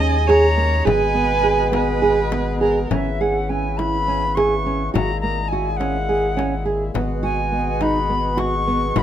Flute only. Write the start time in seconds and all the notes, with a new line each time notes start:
0.01 G#5
0.30 A#5
0.88 G#5
2.92 E5
3.21 F#5
3.49 G#5
3.77 B5
4.35 C#6
4.94 A#5
5.21 A#5
5.48 G#5
5.77 F#5
7.23 G#5
7.82 B5
8.39 C#6
8.98 B5